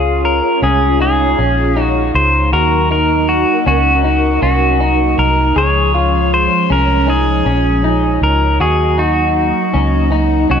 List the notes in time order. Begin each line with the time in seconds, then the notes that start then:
Already playing: C#2 G#3 C#4 F4 G#4
0.25 A#4
0.62 C2 C#4 G#4
1.00 D#4 G#4
1.39 A#1 C#4
1.77 D#4
1.82 F#4
2.14 C#2 C5
2.52 D#2 F#3 A#3 D#4 F#4 A#4
2.91 D#4 A#4
3.29 F#4
3.66 C#2 C#4 F#4
4.04 D#4
4.42 C2 C#4 F#4
4.80 D#4
5.18 C2 A#4
5.55 C#2 F3 G#3 C#4 G#4 C#5
5.94 F4
6.34 C5
6.70 C2 C#4 A#4
7.08 D#4 G#4
7.46 A#1 C#4
7.84 D#4
8.22 C#2 A#4
8.59 D#2 F#3 A#3 D#4 F#4 G#4
8.98 D#4 F#4
9.74 C#2 C#4
10.12 D#4
10.50 C2 C#4 F#4